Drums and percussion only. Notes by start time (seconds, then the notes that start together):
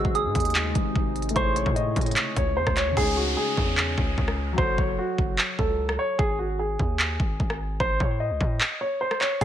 0.05 kick
0.15 closed hi-hat
0.35 kick, closed hi-hat
0.40 closed hi-hat
0.45 closed hi-hat
0.50 closed hi-hat
0.55 clap, closed hi-hat
0.75 kick, closed hi-hat
0.96 kick
1.16 closed hi-hat
1.22 closed hi-hat
1.29 closed hi-hat
1.36 kick, closed hi-hat
1.56 closed hi-hat
1.66 kick
1.76 closed hi-hat
1.96 kick, closed hi-hat
2.01 closed hi-hat
2.06 closed hi-hat
2.11 closed hi-hat
2.16 clap, closed hi-hat
2.36 kick, closed hi-hat
2.67 kick, cross-stick
2.77 clap, closed hi-hat
2.97 kick, crash
3.57 kick
3.77 clap
3.98 kick
4.18 kick
4.28 cross-stick
4.58 kick
4.78 kick
5.18 kick
5.38 clap
5.59 kick
5.89 cross-stick
6.19 kick
6.79 kick
6.99 clap
7.20 kick
7.40 kick
7.50 cross-stick
7.80 kick
8.00 kick
8.41 kick
8.61 clap
9.11 cross-stick
9.21 clap
9.41 kick, closed hi-hat